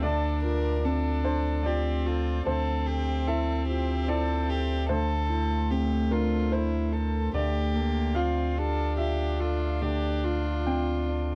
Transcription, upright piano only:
Already playing: A4
0.03 D2 D5
0.44 F4
0.85 C4
1.25 D4 C5
1.63 F4 D5
2.06 A4
2.46 D2 C5
2.88 A4
3.27 E4 E5
3.69 F4
4.08 E4 D5
4.49 A4
4.89 D2 C5
5.30 E4
5.71 C4
6.11 D4 A#4
6.52 E4 C5
6.93 A4
7.34 D2 D5
7.74 A4
8.15 F4 F5
8.57 G4
8.97 F4 E5
9.40 A4
9.82 D2 D5
10.25 F4
10.67 C4 G5
11.09 D4

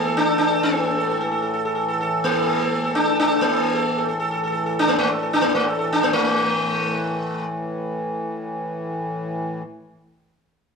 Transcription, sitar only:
Already playing: A#3
0.06 A4
0.17 D4
0.28 A4
0.38 D4
0.51 A4
0.63 A#3
0.76 A4
0.86 A4
0.98 A4
1.09 A4
1.20 A4
1.32 A4
1.42 A4
1.54 A4
1.65 A4
1.75 A4
1.88 A4
2.01 A4
2.24 A#3
2.36 A4
2.47 A4
2.60 A4
2.71 A4
2.84 A4
2.95 D4
3.07 A4
3.19 D4
3.31 A4
3.41 A#3
3.52 A4
3.75 A4
3.98 A4
4.08 A4
4.20 A4
4.31 A4
4.44 A4
4.52 A4
4.66 A4
4.79 D4
4.88 A#3
4.99 A3
5.12 A4
5.23 A4
5.33 D4
5.41 A#3
5.55 A3
5.68 A4
5.79 A4
5.93 D4
6.03 A#3
6.13 A3

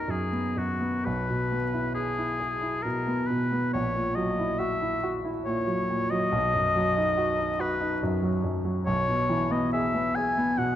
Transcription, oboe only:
Already playing: A#4
0.10 G#4
0.58 F#4
1.05 B4
1.95 G#4
2.83 A#4
3.26 B4
3.73 C#5
4.15 D#5
4.59 E5
5.45 C#5
6.10 D#5
7.61 B4
8.86 C#5
9.51 D#5
9.73 E5
10.15 G#5
10.58 F#5

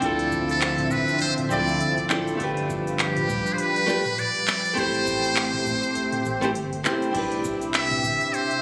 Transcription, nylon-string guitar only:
0.00 C4 D4 E4 F4
0.06 A4
1.49 C4 D4 E4 F4 A4
2.08 C4 D4 E4 F4 A4
2.36 A3 D4 F4
2.42 G4 B4
3.86 A3 D4 F4 G4 B4
4.73 A3 C4 E4
4.78 G4 C5
6.41 A3 C4 E4 G4 C5
6.83 A3 C4 E4 G4 C5
7.11 C4 D4 E4
7.16 G4 B4

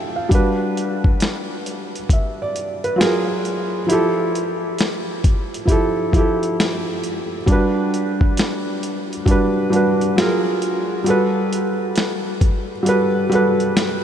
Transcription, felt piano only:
Already playing: F3 E4 G4 A4 E5 F5 G5 A5
0.16 F5
0.29 G3 D4 F#4
0.35 B4
2.13 E5
2.42 D5
2.84 B4
2.96 F#3 F4
3.00 G#4 A#4
3.87 F3 E4
3.91 G4 A4
5.65 F3 E4 G4
5.71 A4
6.12 F3 E4
6.16 G4 A4
7.46 G3 D4 F#4
7.52 B4
9.26 G3 D4 F#4
9.31 B4
9.70 G3 D4 F#4
9.76 B4
10.16 F#3 F4
10.20 G#4 A#4
11.04 G3 F#4
11.08 A4 B4
12.83 G3 F#4
12.87 A4 B4
13.29 G3 F#4 A4
13.35 B4

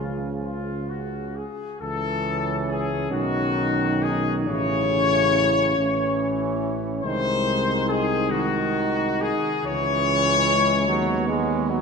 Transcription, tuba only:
Already playing: C#2
1.81 C#2
3.11 B1
4.48 A1
5.78 A1
7.04 C2
9.64 C#2
10.89 D#2

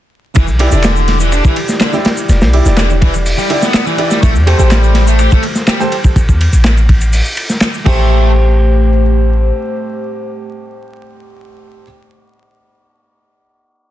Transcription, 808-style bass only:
0.36 E1
0.48 B1
0.72 E1
2.29 E1
2.41 B1
2.65 E1
4.23 A1
4.35 E2
4.59 A1
6.16 A1
6.29 E2
6.53 A1
7.86 A1

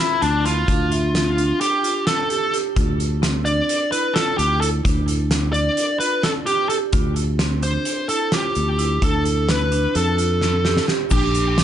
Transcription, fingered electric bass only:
0.22 D2
0.68 D2
2.77 D2
4.39 D2
4.85 D2
6.93 D2
8.56 D2
9.02 D2
9.95 F2
11.12 A#1

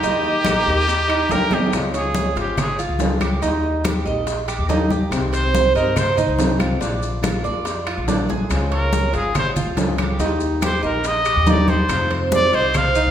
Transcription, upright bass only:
0.03 D#2
0.46 A#1
0.67 D#2
1.31 D2
1.73 C#2
2.36 G#1
2.89 C#2
3.42 D#2
4.06 A#1
4.59 D#2
5.11 C2
5.75 G2
6.28 C2
6.81 A#1
7.45 F2
7.98 A#1
8.50 C#2
9.14 G#1
9.67 C#2
10.19 D#2
10.83 A#1
11.36 D#2
11.90 F2
12.53 C2
13.07 F2

